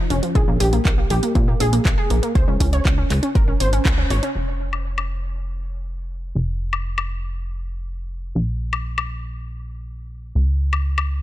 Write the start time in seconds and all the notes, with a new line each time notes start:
0.10 F1 C#4, open hi-hat
0.23 F3, closed hi-hat
0.35 A#1 G#4, kick, closed hi-hat
0.48 A#1 A#3
0.60 A#1 G4, open hi-hat
0.73 A#3, closed hi-hat
0.85 A#1 A#3, kick, clap, closed hi-hat
0.98 A#3
1.10 A#1 G4, open hi-hat
1.23 A#3, closed hi-hat
1.35 A#2 A#3, kick, closed hi-hat
1.48 A#3
1.60 A#1 G#4, open hi-hat
1.73 A#3, closed hi-hat
1.85 A#1 A#3, kick, clap, closed hi-hat
1.98 G#4
2.10 A#1 A#3, open hi-hat
2.23 A#3, closed hi-hat
2.35 C#2 C5, kick, closed hi-hat
2.48 C#2 C#4
2.60 C#2 C#4, kick, open hi-hat
2.73 C#5, closed hi-hat
2.85 C#2 C#4, kick, clap, closed hi-hat
2.98 C#4
3.10 C#2, clap, open hi-hat
3.23 C#4, closed hi-hat
3.35 G#1 A#4, kick, closed hi-hat
3.48 C#4
3.60 G#1 C5, open hi-hat
3.73 C#4, closed hi-hat
3.85 C#2 C#4, kick, clap, closed hi-hat
3.98 C#4
4.10 G#1 C#5, open hi-hat
4.23 C#4, closed hi-hat
4.35 F1
4.73 high woodblock
4.98 high woodblock
6.35 F1
6.73 high woodblock
6.98 high woodblock
8.35 A#1
8.73 high woodblock
8.98 high woodblock
10.35 C#2
10.73 high woodblock
10.98 high woodblock